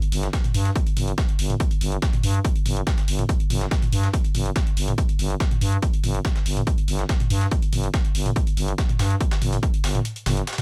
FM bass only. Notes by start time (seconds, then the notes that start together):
0.12 G1
0.54 G2
0.97 G1
1.39 G1
1.81 G1
2.23 G2
2.66 G1
3.08 G1
3.50 G1
3.92 G2
4.35 G1
4.77 G1
5.19 G1
5.61 G2
6.04 G1
6.46 G1
6.88 G1
7.30 G2
7.73 G1
8.15 G1
8.57 G1
8.99 G2
9.42 G1
9.84 G1
10.26 G1